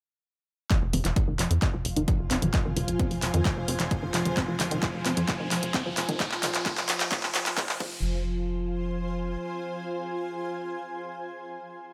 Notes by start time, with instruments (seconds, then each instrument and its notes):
0.70 synth drone F3, synth arpeggio sound F3, ambient pad F4, kick, clap, closed hi-hat, riser
0.82 analog synth bass F1
0.93 analog synth bass F1, synth arpeggio sound C4, mid tom, open hi-hat
1.05 analog synth bass F1, synth arpeggio sound F3, clap, closed hi-hat
1.16 kick, closed hi-hat
1.28 analog synth bass F1, synth arpeggio sound D#3
1.39 analog synth bass F1, synth arpeggio sound F3, ambient pad C5, clap, open hi-hat
1.51 analog synth bass F2, closed hi-hat
1.62 synth arpeggio sound C4, kick, clap, closed hi-hat
1.67 ambient pad G#5
1.74 analog synth bass F1, synth arpeggio sound F3
1.85 analog synth bass F1, open hi-hat
1.96 analog synth bass F1, synth arpeggio sound D#3, closed hi-hat
2.08 synth arpeggio sound F3, kick, closed hi-hat
2.19 analog synth bass G1
2.31 analog synth bass F1, synth arpeggio sound C4, clap, open hi-hat
2.42 analog synth bass F1, synth arpeggio sound F3, closed hi-hat, mid tom
2.54 kick, clap, closed hi-hat
2.65 analog synth bass F1, synth arpeggio sound D#3
2.77 analog synth bass F1, synth arpeggio sound F3, mid tom, open hi-hat
2.88 analog synth bass F1, closed hi-hat
2.99 synth arpeggio sound C4, kick, closed hi-hat
3.11 analog synth bass F1, synth arpeggio sound F3, open hi-hat
3.22 analog synth bass F1, clap, open hi-hat
3.34 analog synth bass F2, synth arpeggio sound D#3, closed hi-hat
3.45 synth arpeggio sound F3, kick, clap, closed hi-hat
3.57 analog synth bass F1
3.68 analog synth bass F1, synth arpeggio sound C4, open hi-hat
3.80 analog synth bass F1, synth arpeggio sound F3, clap, closed hi-hat
3.91 kick, closed hi-hat
4.03 analog synth bass G1, synth arpeggio sound D#3
4.14 analog synth bass F1, synth arpeggio sound F3, clap, open hi-hat
4.25 analog synth bass F1, closed hi-hat, mid tom
4.37 synth arpeggio sound C4, kick, clap, closed hi-hat
4.48 analog synth bass F1, synth arpeggio sound F3
4.60 analog synth bass F1, clap, mid tom, open hi-hat
4.71 analog synth bass F1, synth arpeggio sound D#3, closed hi-hat
4.83 synth arpeggio sound F3, kick, clap, closed hi-hat
4.94 analog synth bass F1
5.06 analog synth bass F1, synth arpeggio sound C4, clap, open hi-hat
5.17 analog synth bass F2, synth arpeggio sound F3, closed hi-hat
5.28 kick, clap, closed hi-hat
5.40 analog synth bass F1, synth arpeggio sound D#3
5.51 analog synth bass F1, synth arpeggio sound F3, clap, open hi-hat
5.63 analog synth bass F1, closed hi-hat
5.74 synth arpeggio sound C4, kick, clap, closed hi-hat
5.86 analog synth bass G1, synth arpeggio sound F3
5.97 analog synth bass F1, clap, open hi-hat
6.09 analog synth bass F1, synth arpeggio sound D#3, closed hi-hat, mid tom
6.20 kick, clap, closed hi-hat
6.32 clap
6.43 clap, mid tom, open hi-hat
6.54 clap, closed hi-hat
6.66 kick, clap, closed hi-hat
6.77 clap, open hi-hat
6.89 clap, open hi-hat
7.00 clap, closed hi-hat
7.12 kick, clap, closed hi-hat
7.23 clap
7.35 clap, open hi-hat
7.46 clap, closed hi-hat
7.57 kick, clap, closed hi-hat
7.69 clap
7.80 analog synth bass F1, synth arpeggio sound F3, synth drone F3, ambient pad F4, kick, crash
7.87 ambient pad C5
8.17 ambient pad G#5